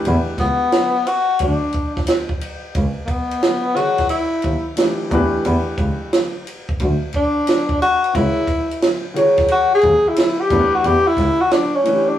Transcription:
Already playing: grand piano E3 A3 D4 G4 B4
0.05 double bass E2, ride
0.38 double bass C#2, tenor saxophone B3, kick, snare, ride
0.72 snare, hi-hat pedal, ride
1.07 tenor saxophone F#4, ride
1.39 double bass D2, tenor saxophone D4, kick, ride
1.73 kick, ride
1.97 kick, snare
2.07 snare, hi-hat pedal, ride
2.29 kick
2.41 ride
2.75 double bass C#2, kick, ride
3.05 tenor saxophone A#3, kick, ride
3.10 tenor saxophone B3
3.31 ride
3.43 snare, hi-hat pedal, ride
3.75 grand piano D#3 G#3 C#4 F#4 B4, tenor saxophone F#4, ride
3.98 kick, snare, ride
4.09 tenor saxophone E4, ride
4.42 double bass D#2, kick, ride
4.76 grand piano E3 A3 D4 G4 B4, snare, hi-hat pedal, ride
5.10 double bass E2, grand piano E3 A3 D4 G4, kick, ride
5.14 grand piano B4
5.45 double bass E2, ride
5.78 double bass C#2, kick, ride
6.13 snare, hi-hat pedal, ride
6.47 ride
6.69 kick
6.80 double bass D2, kick, ride
7.13 tenor saxophone D4, kick, ride
7.47 snare, hi-hat pedal, ride
7.69 kick
7.82 tenor saxophone F#4, ride
8.04 ride
8.13 double bass C#2, grand piano D#3 G#3 C#4 F#4 B4, tenor saxophone E4, kick, ride
8.47 kick, ride
8.71 ride
8.82 snare, hi-hat pedal, ride
9.14 grand piano D#3 G#3 C#4 F#4, ride
9.18 grand piano C#5
9.37 kick, snare, ride
9.48 tenor saxophone F#4, ride
9.75 tenor saxophone G#4
9.81 double bass D#2, kick, ride
10.08 tenor saxophone E4
10.16 snare, hi-hat pedal, ride
10.41 tenor saxophone G4
10.49 double bass E2, grand piano E3 A3 D4 G4, kick, crash
10.53 grand piano A4
10.59 grand piano B4
10.75 tenor saxophone F#4
10.84 double bass E2, tenor saxophone G4, ride
11.07 tenor saxophone E4
11.17 double bass C#2, kick, snare, ride
11.41 tenor saxophone F#4
11.51 tenor saxophone D4, snare, hi-hat pedal, ride
11.75 tenor saxophone C#4
11.84 grand piano E3 A3 D4 F#4, ride
11.88 grand piano B4
11.93 grand piano G4
12.08 tenor saxophone D4

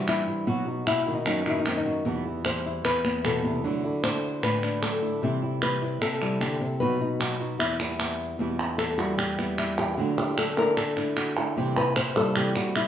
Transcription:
Already playing: nylon-string guitar G2 E3 G3
0.08 nylon-string guitar E4, muted nylon-string guitar stroke, clap
0.27 nylon-string guitar G3 C4 E4
0.47 nylon-string guitar B2 F#3 B3 D#4 F#4
0.66 nylon-string guitar B3 D#4 F#4
0.87 nylon-string guitar E4, muted nylon-string guitar stroke, clap
1.06 nylon-string guitar D#3 B3 D#4 F#4
1.14 nylon-string guitar D#4
1.26 nylon-string guitar F#2 B2 F#3 B3 D#4 F#4, clap
1.46 nylon-string guitar D#3 B3 D#4 E4 F#4, clap
1.59 nylon-string guitar D#4
1.66 nylon-string guitar C4, muted nylon-string guitar stroke, clap
1.77 nylon-string guitar D#4
1.86 nylon-string guitar B3 D#4 F#4
2.05 nylon-string guitar E2 B2 E3 G3 B3 E4
2.25 nylon-string guitar E3 G3 B3 E4
2.45 nylon-string guitar E3 G3 E4 C5, clap
2.66 nylon-string guitar E4
2.85 nylon-string guitar E2 B4, muted nylon-string guitar stroke, clap
3.05 nylon-string guitar B3, clap
3.24 nylon-string guitar B2 E3 G3 B3 E4 A4, clap
3.44 nylon-string guitar C3 E3 G3 B3 E4
3.64 nylon-string guitar D3 F#3 A3 D4 E4
3.84 nylon-string guitar A3 D4 E4 F#4
4.04 nylon-string guitar A3 D4 E4 C5, clap
4.43 nylon-string guitar A2 B4, muted nylon-string guitar stroke, clap
4.63 nylon-string guitar D4, clap
4.82 nylon-string guitar F#3 A3 D4 E4 A4, clap
5.02 nylon-string guitar A3 D4 E4
5.22 nylon-string guitar C3 E3 G3 C4 E4
5.42 nylon-string guitar G3 C4 E4
5.62 nylon-string guitar E3 G3 C4 E4 B4, clap
5.82 nylon-string guitar G3 C4 E4
6.01 nylon-string guitar C3 A4, muted nylon-string guitar stroke, clap
6.21 nylon-string guitar G3 C4 E4, clap
6.40 nylon-string guitar D3 G4, clap
6.61 nylon-string guitar C3 A4
6.80 nylon-string guitar B2 F#3 B3 D#4 F#4 B4
7.00 nylon-string guitar B3 D#4 F#4
7.20 nylon-string guitar F#3 B3 D#4 F#4, clap
7.40 nylon-string guitar B3 D#4 F#4
7.59 nylon-string guitar E2 E4, muted nylon-string guitar stroke, clap
7.80 nylon-string guitar E3 G3 B3 E4, clap
8.00 nylon-string guitar B3, clap
8.39 nylon-string guitar E2 B2 E3 G3 B3 E4
8.59 nylon-string guitar E3 G3 B3 E4, clap
8.78 nylon-string guitar E3 G3 B3 E4 A4, clap
8.98 nylon-string guitar E3 G3 B3 E4 F#4, clap
9.18 nylon-string guitar G4, muted nylon-string guitar stroke, clap
9.38 nylon-string guitar E3 G3 B3 E4, clap
9.58 nylon-string guitar E4, clap
9.78 nylon-string guitar E3 G3 B3 E4 G4, clap
9.97 nylon-string guitar D3 F#3 A3 D4 E4 F#4
10.18 nylon-string guitar A3 D4 E4 G4, clap
10.37 nylon-string guitar F#3 A3 D4 E4 A4, clap
10.57 nylon-string guitar A3 D4 E4 A#4, clap
10.77 nylon-string guitar A4, muted nylon-string guitar stroke, clap
10.97 nylon-string guitar A3 D4 E4, clap
11.17 nylon-string guitar F#4, clap
11.36 nylon-string guitar A3 D4 E4 A4
11.56 nylon-string guitar C3 E3 G3 C4 E4 G4
11.76 nylon-string guitar G3 C4 E4 B4, clap
11.96 nylon-string guitar C5, muted nylon-string guitar stroke, clap
12.15 nylon-string guitar G3 C4 E4 A4, clap
12.35 nylon-string guitar C3 E3 G3 C4 E4 G4, clap
12.55 nylon-string guitar G3 C4 E4 F#4, clap
12.76 nylon-string guitar E4, muted nylon-string guitar stroke, clap

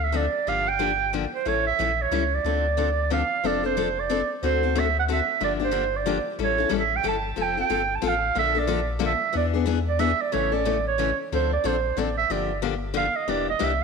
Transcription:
Already playing: sub bass D2
0.04 clarinet E5
0.12 steel-string acoustic guitar D3 F3 C4 D4 A4, clarinet D5
0.47 sub bass G1, steel-string acoustic guitar D3 F3 A#3 D4 G4, clarinet F5
0.68 clarinet G5
0.79 steel-string acoustic guitar D3 F3 A#3 D4 G4
1.13 steel-string acoustic guitar D3 F3 A#3 D4 G4
1.35 clarinet C5
1.45 sub bass A1, steel-string acoustic guitar E3 G3 C#4 E4 A4, clarinet C#5
1.67 clarinet E5
1.79 sub bass A#1, steel-string acoustic guitar E3 G3 C#4 E4 A4
2.02 clarinet C#5
2.11 sub bass C#2, steel-string acoustic guitar E3 G3 C#4 E4 A4
2.34 clarinet D5
2.44 sub bass D2, steel-string acoustic guitar D3 F3 C4 D4 A4
2.77 steel-string acoustic guitar D3 F3 C4 D4 A4
3.10 steel-string acoustic guitar D3 F3 C4 D4 A4, clarinet F5
3.44 sub bass F1, steel-string acoustic guitar F3 C4 D4 A4, clarinet D5
3.63 steel-string acoustic guitar C4 D4 A4, clarinet C5
3.77 steel-string acoustic guitar F3 C4 D4 A4
4.00 clarinet D5
4.10 steel-string acoustic guitar F3 C4 D4 A4
4.43 sub bass D2, steel-string acoustic guitar D3 A3 C4 F#4 A4, clarinet C5
4.63 steel-string acoustic guitar C4 F#4 A4
4.75 steel-string acoustic guitar D3 A3 C4 F#4 A4, clarinet E5
4.99 clarinet F#5
5.08 steel-string acoustic guitar D3 A3 C4 F#4 A4
5.13 clarinet E5
5.40 sub bass G1, steel-string acoustic guitar D3 F3 A#3 D4 G4, clarinet D5
5.60 steel-string acoustic guitar A#3 D4 G4
5.64 clarinet C5
5.71 steel-string acoustic guitar D3 F3 A#3 D4 G4
5.96 clarinet D5
6.06 steel-string acoustic guitar D3 F3 A#3 D4 G4
6.39 sub bass A1, steel-string acoustic guitar E3 G3 C#4 E4 A4
6.44 clarinet C#5
6.58 steel-string acoustic guitar C#4 E4 A4
6.69 sub bass A1, steel-string acoustic guitar E3 G3 C#4 E4 A4
6.77 clarinet E5
6.96 clarinet G5
7.03 sub bass G1, steel-string acoustic guitar E3 G3 C#4 E4 A4
7.09 clarinet A5
7.36 sub bass F1, steel-string acoustic guitar F3 C4 F4 A4
7.42 clarinet G5
7.57 steel-string acoustic guitar C4 F4 A4, clarinet G5
7.70 sub bass G1, steel-string acoustic guitar F3 C4 F4 A4
7.96 clarinet A5
8.02 sub bass A1, steel-string acoustic guitar F3 C4 F4 A4
8.08 clarinet F5
8.35 sub bass A#1, steel-string acoustic guitar D3 F3 A#3 D4 A4, clarinet E5
8.55 steel-string acoustic guitar A#3 D4 A4
8.59 clarinet D5
8.67 steel-string acoustic guitar D3 F3 A#3 D4 A4
8.99 steel-string acoustic guitar D3 F3 A#3 D4 A4
9.05 clarinet E5
9.33 sub bass E2, steel-string acoustic guitar E3 B3 D4 G#4
9.37 clarinet D5
9.54 steel-string acoustic guitar B3 D4 G#4
9.66 steel-string acoustic guitar E3 B3 D4 G#4
9.89 clarinet D5
9.99 steel-string acoustic guitar E3 B3 D4 G#4, clarinet E5
10.21 clarinet D5
10.32 sub bass A1, steel-string acoustic guitar C#3 E3 A3 C#4 A4, clarinet C#5
10.52 steel-string acoustic guitar A3 C#4 A4, clarinet D5
10.65 steel-string acoustic guitar C#3 E3 A3 C#4 A4
10.87 clarinet C#5
10.98 steel-string acoustic guitar C#3 E3 A3 C#4 A4
11.32 sub bass D2, steel-string acoustic guitar D3 F3 C4 D4 A4, clarinet C5
11.53 clarinet D5
11.64 sub bass A#1, steel-string acoustic guitar D3 F3 C4 D4 A4, clarinet C5
11.97 sub bass A1, steel-string acoustic guitar D3 F3 C4 D4 A4, clarinet D5
12.17 clarinet E5
12.30 sub bass G1, steel-string acoustic guitar D3 F3 A#3 D4 G4, clarinet D5
12.62 steel-string acoustic guitar D3 F3 A#3 D4 G4
12.94 steel-string acoustic guitar D3 F3 A#3 D4 G4, clarinet F5
13.16 clarinet D#5
13.28 sub bass E1, steel-string acoustic guitar E3 A#3 D4 G4, clarinet D5
13.49 clarinet D#5
13.59 sub bass C2, steel-string acoustic guitar E3 A#3 D4 G4
13.63 clarinet E5

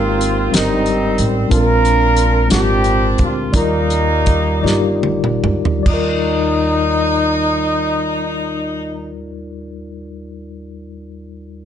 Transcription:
Already playing: upright bass G#1, tine electric piano G#2 G#3 C4 D#4 G4 A#4, horn section A#3 C4 F4
0.21 closed hi-hat
0.51 upright bass G1, tine electric piano G3 C4 D#4 G4 A#4, horn section G3 C4 D#4, snare, closed hi-hat
0.86 closed hi-hat
1.18 upright bass A1, closed hi-hat
1.49 upright bass A#1, tine electric piano A#2 G#3 C4 D4 F4 A#4, horn section D4 F4 A#4, kick, closed hi-hat
1.85 closed hi-hat
2.17 closed hi-hat
2.48 upright bass G#1, tine electric piano G#3 C4 D4 F4 G4, horn section C4 D4 G4, snare, closed hi-hat
2.84 closed hi-hat
3.18 upright bass D2, horn section F4, kick, closed hi-hat
3.52 upright bass D#2, tine electric piano D#3 G3 D#4 F4 A#4 D5, horn section A#3 D#4, kick, closed hi-hat
3.56 horn section G3
3.90 closed hi-hat
4.26 kick, closed hi-hat
4.62 upright bass G1, tine electric piano G3 D#4 F4 G4 D5
4.66 snare
5.03 high tom
5.24 mid tom
5.44 upright bass D2, mid tom
5.65 floor tom
5.79 tine electric piano G3 D5
5.86 upright bass D#2, tine electric piano D#2 D#4 F4, horn section D#4, kick, crash
5.94 tine electric piano A#4

